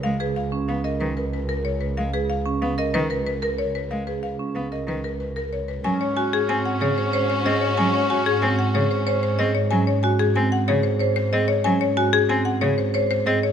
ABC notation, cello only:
X:1
M:6/4
L:1/8
Q:1/4=186
K:Dbmix
V:1 name="Cello" clef=bass
A, z3 C z E, z4 z | A, z3 C z E, z4 z | A, z3 C z E, z4 z | [K:Abmix] G, z3 C z D, z3 C z |
G, z3 C z D, z3 C z | G, z3 C z D, z3 C z | G, z3 C z D, z3 C z |]